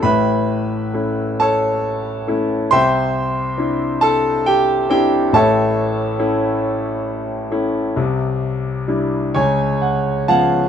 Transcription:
<<
  \new Staff \with { instrumentName = "Grand piano" } { \time 6/8 \key a \major \tempo 4. = 45 << { <b' e'' b''>4. <a' cis'' a''>4. | <c'' e'' g'' c'''>4. <a' a''>8 <g' g''>8 <g' g''>8 | <a' cis'' e'' a''>2.~ | <a' cis'' e'' a''>4. <cis'' gis''>4 <fis'' a''>8 | } \\ { r2. | r2. | r2. | r2 fis''8 eis''8 | } >> }
  \new Staff \with { instrumentName = "Grand piano" } { \time 6/8 \key a \major <a,, a,>4 <a cis' e'>4 r8 <a cis' e'>8 | <c, c>4 <c' d' e'>4 r8 <c' d' e'>8 | <a,, a,>4 <a cis' e'>4 r8 <a cis' e'>8 | <c, c>4 <g d' e'>8 <cis, cis>4 <eis b cis'>8 | }
>>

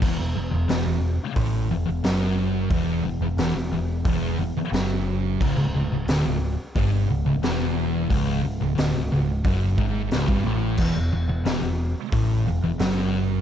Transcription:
<<
  \new Staff \with { instrumentName = "Distorted electric guitar" } { \clef bass \time 4/4 \key e \mixolydian \tempo 4 = 89 e,16 e,16 e,16 e,16 e,16 e,8 r16 a,8 e,16 e,16 fis,4 | e,8 e,16 e,16 e,16 e,16 e,8 e,8 e,16 r16 fis,4 | cis,16 cis,16 cis,16 cis,16 d,16 cis,8 r16 g,8 cis,16 cis,16 e,4 | cis,8 cis,16 cis,16 d,16 cis,16 cis,8 fis,8 gis,8 cis,16 g,16 a,8 |
e,16 e,16 e,16 e,16 e,16 e,8 r16 a,8 e,16 e,16 fis,4 | }
  \new Staff \with { instrumentName = "Distorted electric guitar" } { \clef bass \time 4/4 \key e \mixolydian e,16 e,16 e,16 e,16 e,16 e,8 r16 a,8 e,16 e,16 fis,4 | e,8 e,16 e,16 e,16 e,16 e,8 e,8 e,16 r16 fis,4 | cis,16 cis,16 cis,16 cis,16 d,16 cis,8 r16 g,8 cis,16 cis,16 e,4 | cis,8 cis,16 cis,16 d,16 cis,16 cis,8 fis,8 gis,8 cis,16 g,16 a,8 |
e,16 e,16 e,16 e,16 e,16 e,8 r16 a,8 e,16 e,16 fis,4 | }
  \new Staff \with { instrumentName = "Picked electric bass" } { \clef bass \time 4/4 \key e \mixolydian e,,16 e,,16 e,,16 e,,16 e,,16 e,,8 r16 a,,8 e,,16 e,,16 fis,,4 | e,,8 e,,16 e,,16 e,,16 e,,16 e,,8 e,,8 e,,16 r16 fis,,4 | cis,,16 cis,,16 cis,,16 cis,,16 d,,16 cis,,8 r16 g,,8 cis,,16 cis,,16 e,,4 | cis,,8 cis,,16 cis,,16 d,,16 cis,,16 cis,,8 fis,,8 gis,,8 cis,,16 g,,16 a,,8 |
e,,16 e,,16 e,,16 e,,16 e,,16 e,,8 r16 a,,8 e,,16 e,,16 fis,,4 | }
  \new DrumStaff \with { instrumentName = "Drums" } \drummode { \time 4/4 <cymc bd>4 <hho sn>4 <hho bd>4 <hho sn>4 | <hho bd>4 <hho sn>4 <hho bd>4 <hho sn>4 | <cymc bd>4 <hho sn>4 <hho bd>4 <hho sn>4 | <hho bd>4 <hho sn>4 <hho bd>8 bd8 <hho sn>16 bd8. |
<cymc bd>4 <hho sn>4 <hho bd>4 <hho sn>4 | }
>>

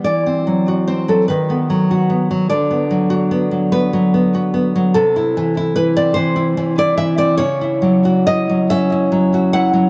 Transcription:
\new Staff \with { instrumentName = "Nylon-string guitar" } { \time 6/8 \key b \phrygian \tempo 4. = 49 << { d''4 c''16 a'16 b'4. | d''4. b'4. | a'4 b'16 d''16 c''8. d''16 e''16 d''16 | cis''4 dis''8 e''4 fis''8 | } \\ { e16 c'16 fis16 fis'16 c'16 fis16 dis16 b16 fis16 fis'16 b16 fis16 | d16 b16 fis16 fis'16 b16 fis16 b16 fis16 b16 fis'16 b16 fis16 | c16 e'16 e16 e'16 e16 c'16 e16 e'16 e16 e'16 e16 c'16 | cis16 e'16 fis16 fis'16 e'16 fis16 cis'16 e'16 fis16 fis'16 e'16 fis16 | } >> }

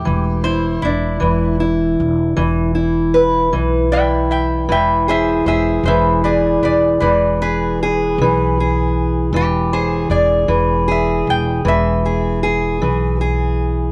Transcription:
<<
  \new Staff \with { instrumentName = "Resonator guitar played with a steel bar" } { \time 12/8 \key e \dorian \tempo 4. = 52 g'8 c''8 e'4 r2. <e'' g''>8 <e'' g''>8 | <e'' g''>8 <c'' e''>8 <c'' e''>8 <c'' e''>8 <b' d''>8 <b' d''>8 <b' d''>8 b'2 r8 | g'8 c''8 d''4 e''8 g''8 e''2 r4 | }
  \new Staff \with { instrumentName = "Steel-string acoustic guitar" } { \time 12/8 \key e \dorian << { r8 e'8 d'4 e'4. e'8 b'4 e'4 | r8 gis'8 gis'4 gis'4. gis'8 gis'4 gis'4 | r8 gis'8 gis'4 gis'4. gis'8 gis'4 gis'4 | } \\ { e4. e4. e4. e4. | e4. e4. e4. e4. | e4. e4. e4. e4. | } >> }
  \new Staff \with { instrumentName = "Upright bass" } { \clef bass \time 12/8 \key e \dorian e,,4 e,,8 e,,4 e,,8 e,,4. b,,4. | e,,4 e,,8 e,,4 e,,8 e,,4. b,,4. | e,,4 e,,8 e,,4 e,,8 e,,4. b,,4. | }
>>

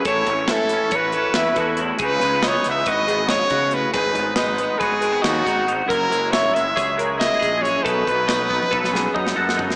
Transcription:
<<
  \new Staff \with { instrumentName = "Clean electric guitar" } { \time 9/8 \key fis \dorian \tempo 4. = 92 a'8 cis''8 e''4 cis''8 a'8 e''8 a'4 | gis'8 b'8 dis''4 b'8 gis'8 dis''8 fis'4 | gis'8 b'8 dis''4 b'8 gis'8 dis''8 fis'4 | ais'8 cis''8 e''4 cis''8 ais'8 e''8 gis'4 |
a'8 b'8 dis''4 b'8 gis'8 dis''8 fis'4 | }
  \new Staff \with { instrumentName = "Trumpet" } { \time 9/8 \key fis \dorian cis''4 a'4 b'2 r8 | b'4 cis''8 e''8 dis''4 cis''4 b'8 | b'4 b'4 gis'4 fis'4 r8 | ais'4 cis''8 e''4 r8 dis''4 cis''8 |
b'2.~ b'8 r4 | }
  \new Staff \with { instrumentName = "Clean electric guitar" } { \time 9/8 \key fis \dorian << { e'8 cis'8 e'8 cis'8 fis'8 cis'8 e'8 fis'8 e'8 | dis'8 gis16 b16 dis'8 b8 fis'8 b2 | dis'8 b8 dis'8 b8 fis'8 gis16 b16 dis'8 dis'8 dis'8 | e'8 gis8 e'8 gis8 gis'8 gis8 e'8 gis'8 e'8 |
dis'8 b8 dis'8 b8 a'8 b8 dis'8 a'8 dis'8 | } \\ { a,4 e4. e4. a,8 | cis4 e4. gis,8 cis8 b,8 a,8 | gis,4 gis4. dis4. gis,8 | fis,4 fis4. cis4. fis,8 |
b,4 fis4. fis,4. b,8 | } >> }
  \new Staff \with { instrumentName = "Fingered electric bass" } { \clef bass \time 9/8 \key fis \dorian a,,8 a,,4. a,,4 e,8 e,4 | cis,8 cis,4 cis,8 gis,,4. cis4 | gis,,8 gis,,4. gis,,4 dis,8 gis,,4 | fis,,8 fis,,4 fis,,8 cis,4. ais,,4 |
b,,8 b,,4. b,,4 fis,8 fis,4 | }
  \new DrumStaff \with { instrumentName = "Drums" } \drummode { \time 9/8 <hh bd>8 <hh bd>8 <hh sn>8 hh8 <hh bd>8 hh8 <hh sn>8 <hh bd>8 hh8 | <hh bd>8 <hh sn>8 <hh sn>8 <hh sn>8 <hh bd>8 hh8 <hh sn>8 <hh bd>8 hh8 | <hh bd>8 <hh bd>8 <hh sn>8 hh8 <hh bd>8 hh8 <hh sn>8 <hh bd>8 hh8 | <hh bd>8 hh8 <hh sn>8 hh8 <hh bd>8 hh8 <hh sn>8 <hh bd>8 hh8 |
<hh bd>8 <hh bd>8 <hh sn>8 bd16 tommh16 bd16 sn16 sn8 bd16 sn8 sn16 tomfh16 sn16 | }
>>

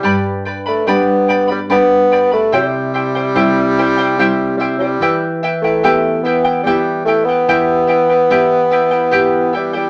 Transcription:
<<
  \new Staff \with { instrumentName = "Charango" } { \time 3/4 \key e \minor \tempo 4 = 73 <g' b' d'' g'' b''>8 <b' d'' g'' b''>16 <b' d'' b''>16 <g' b' d'' g'' b''>8 <b' d'' g'' b''>16 <b' d'' b''>16 <g' b' d'' g'' b''>8 <b' d'' g'' b''>16 <b' d'' b''>16 | <e' g' c'' e'' g''>8 <e' c'' e'' g''>16 <e' c'' g''>16 <e' g' c'' e'' g''>8 <e' c'' e'' g''>16 <e' c'' g''>16 <e' g' c'' e'' g''>8 <e' c'' e'' g''>16 <e' c'' g''>16 | <e' g' b' e'' g''>8 <e' b' e'' g''>16 <e' b' g''>16 <e' g' b' e'' g''>8 <e' b' e'' g''>16 <e' b' g''>16 <e' g' b' e'' g''>8 <e' b' e'' g''>16 <e' b' g''>16 | <e' g' b' e'' g''>8 <e' b' e'' g''>16 <e' b' g''>16 <e' g' b' e'' g''>8 <e' b' e'' g''>16 <e' b' g''>16 <e' g' b' e'' g''>8 <e' b' e'' g''>16 <e' b' g''>16 | }
  \new Staff \with { instrumentName = "Nylon-string guitar" } { \time 3/4 \key e \minor g,4 <g b d'>4 <g b d'>4 | c4 <g c' e'>4 <g c' e'>4 | e4 <b e' g'>4 <b e' g'>4 | e4 <b e' g'>4 <b e' g'>4 | }
  \new Staff \with { instrumentName = "Bassoon" } { \clef bass \time 3/4 \key e \minor g8 r16 a16 b8. g16 b8. a16 | g2~ g8 g16 g16~ | g8 r16 a8. b8 g8 a16 b16~ | b2~ b8 g16 g16 | }
>>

